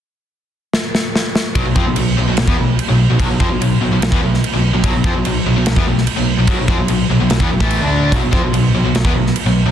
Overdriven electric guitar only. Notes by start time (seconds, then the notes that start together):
1.57 B2 F#3
1.67 B2 F#3
1.78 F3 C4
1.88 B2 F#3
1.98 B2 F#3
2.19 B2 F#3
2.30 B2 F#3
2.39 B2 F#3
2.48 E3 B3
2.58 B2 F#3
2.89 B2 F#3
3.11 B2 F#3
3.20 B2 F#3
3.29 B2 F#3
3.40 F3 C4
3.51 B2 F#3
3.60 B2 F#3
3.81 B2 F#3
3.91 B2 F#3
4.01 B2 F#3
4.10 E3 B3
4.21 B2 F#3
4.53 B2 F#3
4.74 B2 F#3
4.84 B2 F#3
4.95 B2 F#3
5.06 F3 C4
5.16 B2 F#3
5.27 B2 F#3
5.47 B2 F#3
5.58 B2 F#3
5.67 B2 F#3
5.76 E3 B3
5.88 B2 F#3
6.18 B2 F#3
6.37 B2 F#3
6.48 B2 F#3
6.60 B2 F#3
6.69 F3 C4
6.80 B2 F#3
6.89 B2 F#3
7.11 B2 F#3
7.22 B2 F#3
7.32 B2 F#3
7.42 E3 B3
7.52 B2 F#3
7.61 A2 E3 A3
7.82 D3 A3 D4
8.12 B2 F#3
8.23 B2 F#3
8.33 F3 C4
8.44 B2 F#3
8.54 B2 F#3
8.75 B2 F#3
8.85 B2 F#3
8.95 B2 F#3
9.04 E3 B3
9.16 B2 F#3
9.46 B2 F#3
9.66 B2 F#3